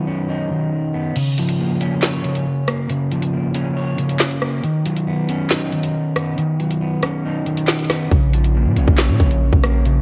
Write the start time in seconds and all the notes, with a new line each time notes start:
Already playing: D#3 F#3 B3
0.07 C#4
0.29 D#4
0.51 D#3
0.94 B3
1.16 C#3, closed hi-hat, crash
1.38 F3, closed hi-hat
1.49 closed hi-hat
1.59 A#3
1.81 C#4, closed hi-hat
2.02 C#5, snare, clap
2.24 C#3, closed hi-hat
2.35 closed hi-hat
2.68 A#3, cross-stick, closed hi-hat
2.90 C#3, closed hi-hat
3.11 F3, closed hi-hat
3.22 closed hi-hat
3.33 A#3
3.55 C#4, closed hi-hat
3.77 C#5
3.98 C#3, closed hi-hat
4.09 closed hi-hat
4.19 snare, clap
4.31 closed hi-hat
4.42 A#3, cross-stick
4.64 D#3, closed hi-hat
4.85 F#3, closed hi-hat
4.96 closed hi-hat
5.07 B3
5.29 C#4, closed hi-hat
5.50 D#4, snare, clap
5.72 D#3, closed hi-hat
5.83 closed hi-hat
6.16 B3, cross-stick, closed hi-hat
6.38 D#3, closed hi-hat
6.59 F#3, closed hi-hat
6.70 closed hi-hat
6.81 B3
7.03 C#4, cross-stick, closed hi-hat
7.25 D#4
7.46 D#3, closed hi-hat
7.57 closed hi-hat
7.67 snare, clap
7.79 closed hi-hat
7.84 closed hi-hat
7.90 B3, cross-stick, snare, closed hi-hat
7.95 closed hi-hat
8.11 A#1 C#3, kick, closed hi-hat
8.33 F3, closed hi-hat
8.44 closed hi-hat
8.55 A#3
8.66 A#2
8.76 A#1 C#4, closed hi-hat
8.88 A#1, kick
8.98 C#5, snare, clap
9.09 A#2
9.20 A#1 C#3, kick, closed hi-hat
9.31 closed hi-hat
9.53 A#1, kick
9.64 A#3, cross-stick, closed hi-hat
9.85 C#3, closed hi-hat